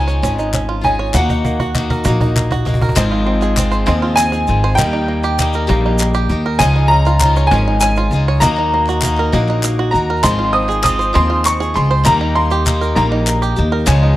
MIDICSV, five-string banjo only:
0, 0, Header, 1, 2, 480
1, 0, Start_track
1, 0, Key_signature, -4, "major"
1, 0, Tempo, 606061
1, 908, Time_signature, 6, 3, 24, 8
1, 11219, End_track
2, 0, Start_track
2, 0, Title_t, "Five-string banjo"
2, 0, Program_c, 0, 105
2, 0, Note_on_c, 0, 61, 69
2, 0, Note_on_c, 0, 65, 88
2, 60, Note_on_c, 0, 73, 77
2, 175, Note_off_c, 0, 61, 0
2, 185, Note_on_c, 0, 61, 88
2, 301, Note_off_c, 0, 65, 0
2, 310, Note_on_c, 0, 63, 70
2, 418, Note_off_c, 0, 61, 0
2, 427, Note_on_c, 0, 61, 71
2, 544, Note_off_c, 0, 73, 0
2, 544, Note_on_c, 0, 65, 89
2, 659, Note_off_c, 0, 61, 0
2, 669, Note_on_c, 0, 61, 71
2, 787, Note_on_c, 0, 73, 90
2, 790, Note_off_c, 0, 63, 0
2, 902, Note_off_c, 0, 61, 0
2, 905, Note_on_c, 0, 58, 89
2, 907, Note_off_c, 0, 65, 0
2, 908, Note_off_c, 0, 73, 0
2, 1029, Note_on_c, 0, 63, 73
2, 1137, Note_off_c, 0, 58, 0
2, 1146, Note_on_c, 0, 58, 72
2, 1266, Note_on_c, 0, 66, 92
2, 1376, Note_off_c, 0, 58, 0
2, 1385, Note_on_c, 0, 58, 67
2, 1508, Note_on_c, 0, 70, 86
2, 1510, Note_off_c, 0, 63, 0
2, 1617, Note_off_c, 0, 58, 0
2, 1627, Note_on_c, 0, 58, 94
2, 1749, Note_off_c, 0, 66, 0
2, 1752, Note_on_c, 0, 63, 86
2, 1860, Note_off_c, 0, 58, 0
2, 1870, Note_on_c, 0, 58, 73
2, 1990, Note_off_c, 0, 70, 0
2, 1995, Note_on_c, 0, 66, 95
2, 2102, Note_off_c, 0, 58, 0
2, 2111, Note_on_c, 0, 58, 78
2, 2232, Note_off_c, 0, 63, 0
2, 2235, Note_on_c, 0, 70, 86
2, 2347, Note_off_c, 0, 58, 0
2, 2350, Note_on_c, 0, 60, 94
2, 2354, Note_off_c, 0, 66, 0
2, 2354, Note_off_c, 0, 70, 0
2, 2468, Note_on_c, 0, 65, 76
2, 2576, Note_off_c, 0, 60, 0
2, 2586, Note_on_c, 0, 60, 75
2, 2711, Note_on_c, 0, 68, 92
2, 2819, Note_off_c, 0, 60, 0
2, 2829, Note_on_c, 0, 60, 75
2, 2943, Note_on_c, 0, 72, 87
2, 2951, Note_off_c, 0, 65, 0
2, 3059, Note_off_c, 0, 60, 0
2, 3069, Note_on_c, 0, 60, 93
2, 3186, Note_on_c, 0, 65, 85
2, 3192, Note_off_c, 0, 68, 0
2, 3297, Note_off_c, 0, 60, 0
2, 3307, Note_on_c, 0, 60, 76
2, 3423, Note_on_c, 0, 68, 84
2, 3428, Note_off_c, 0, 72, 0
2, 3670, Note_off_c, 0, 65, 0
2, 3674, Note_on_c, 0, 72, 95
2, 3788, Note_off_c, 0, 60, 0
2, 3789, Note_off_c, 0, 68, 0
2, 3791, Note_on_c, 0, 58, 94
2, 3794, Note_off_c, 0, 72, 0
2, 3906, Note_on_c, 0, 63, 80
2, 4017, Note_off_c, 0, 58, 0
2, 4026, Note_on_c, 0, 58, 78
2, 4150, Note_on_c, 0, 67, 99
2, 4265, Note_off_c, 0, 58, 0
2, 4275, Note_on_c, 0, 58, 77
2, 4390, Note_off_c, 0, 63, 0
2, 4396, Note_on_c, 0, 70, 80
2, 4504, Note_off_c, 0, 58, 0
2, 4513, Note_on_c, 0, 58, 94
2, 4632, Note_off_c, 0, 67, 0
2, 4639, Note_on_c, 0, 63, 85
2, 4748, Note_off_c, 0, 58, 0
2, 4757, Note_on_c, 0, 58, 76
2, 4868, Note_on_c, 0, 67, 103
2, 4875, Note_off_c, 0, 70, 0
2, 5115, Note_on_c, 0, 70, 93
2, 5117, Note_off_c, 0, 63, 0
2, 5231, Note_off_c, 0, 67, 0
2, 5234, Note_off_c, 0, 70, 0
2, 5236, Note_off_c, 0, 58, 0
2, 5236, Note_on_c, 0, 61, 95
2, 5354, Note_on_c, 0, 63, 80
2, 5466, Note_off_c, 0, 61, 0
2, 5475, Note_on_c, 0, 61, 77
2, 5596, Note_on_c, 0, 65, 100
2, 5703, Note_off_c, 0, 61, 0
2, 5712, Note_on_c, 0, 61, 79
2, 5833, Note_off_c, 0, 65, 0
2, 5834, Note_off_c, 0, 63, 0
2, 5836, Note_on_c, 0, 73, 86
2, 5944, Note_off_c, 0, 61, 0
2, 5953, Note_on_c, 0, 61, 88
2, 6080, Note_on_c, 0, 63, 76
2, 6187, Note_off_c, 0, 61, 0
2, 6197, Note_on_c, 0, 61, 68
2, 6315, Note_off_c, 0, 73, 0
2, 6317, Note_on_c, 0, 65, 93
2, 6556, Note_off_c, 0, 63, 0
2, 6560, Note_on_c, 0, 73, 97
2, 6673, Note_off_c, 0, 61, 0
2, 6675, Note_off_c, 0, 65, 0
2, 6676, Note_off_c, 0, 73, 0
2, 6676, Note_on_c, 0, 58, 95
2, 6799, Note_on_c, 0, 63, 77
2, 6911, Note_off_c, 0, 58, 0
2, 6921, Note_on_c, 0, 58, 76
2, 7039, Note_on_c, 0, 66, 94
2, 7151, Note_off_c, 0, 58, 0
2, 7160, Note_on_c, 0, 58, 77
2, 7276, Note_off_c, 0, 63, 0
2, 7280, Note_on_c, 0, 70, 89
2, 7387, Note_off_c, 0, 58, 0
2, 7397, Note_on_c, 0, 58, 94
2, 7516, Note_off_c, 0, 66, 0
2, 7521, Note_on_c, 0, 63, 83
2, 7625, Note_off_c, 0, 58, 0
2, 7635, Note_on_c, 0, 58, 78
2, 7755, Note_on_c, 0, 66, 94
2, 7756, Note_off_c, 0, 70, 0
2, 7996, Note_off_c, 0, 63, 0
2, 7999, Note_on_c, 0, 70, 91
2, 8103, Note_off_c, 0, 58, 0
2, 8106, Note_on_c, 0, 60, 88
2, 8113, Note_off_c, 0, 66, 0
2, 8116, Note_off_c, 0, 70, 0
2, 8226, Note_on_c, 0, 65, 73
2, 8337, Note_off_c, 0, 60, 0
2, 8346, Note_on_c, 0, 60, 69
2, 8464, Note_on_c, 0, 68, 94
2, 8575, Note_off_c, 0, 60, 0
2, 8585, Note_on_c, 0, 60, 76
2, 8705, Note_on_c, 0, 72, 85
2, 8708, Note_off_c, 0, 65, 0
2, 8814, Note_off_c, 0, 60, 0
2, 8824, Note_on_c, 0, 60, 90
2, 8947, Note_off_c, 0, 68, 0
2, 8948, Note_on_c, 0, 65, 83
2, 9057, Note_off_c, 0, 60, 0
2, 9066, Note_on_c, 0, 60, 73
2, 9188, Note_off_c, 0, 72, 0
2, 9190, Note_on_c, 0, 68, 98
2, 9429, Note_off_c, 0, 65, 0
2, 9430, Note_on_c, 0, 72, 89
2, 9548, Note_off_c, 0, 60, 0
2, 9550, Note_off_c, 0, 68, 0
2, 9550, Note_off_c, 0, 72, 0
2, 9551, Note_on_c, 0, 58, 88
2, 9670, Note_on_c, 0, 63, 84
2, 9776, Note_off_c, 0, 58, 0
2, 9786, Note_on_c, 0, 58, 77
2, 9911, Note_on_c, 0, 67, 101
2, 10021, Note_off_c, 0, 58, 0
2, 10030, Note_on_c, 0, 58, 76
2, 10148, Note_on_c, 0, 70, 85
2, 10149, Note_off_c, 0, 63, 0
2, 10257, Note_off_c, 0, 58, 0
2, 10267, Note_on_c, 0, 58, 96
2, 10390, Note_off_c, 0, 67, 0
2, 10390, Note_on_c, 0, 63, 82
2, 10503, Note_off_c, 0, 58, 0
2, 10513, Note_on_c, 0, 58, 83
2, 10628, Note_off_c, 0, 70, 0
2, 10629, Note_on_c, 0, 67, 97
2, 10867, Note_on_c, 0, 70, 92
2, 10869, Note_off_c, 0, 63, 0
2, 10984, Note_off_c, 0, 58, 0
2, 10987, Note_on_c, 0, 61, 96
2, 10988, Note_off_c, 0, 70, 0
2, 10989, Note_off_c, 0, 67, 0
2, 11110, Note_on_c, 0, 63, 80
2, 11217, Note_off_c, 0, 61, 0
2, 11219, Note_off_c, 0, 63, 0
2, 11219, End_track
0, 0, End_of_file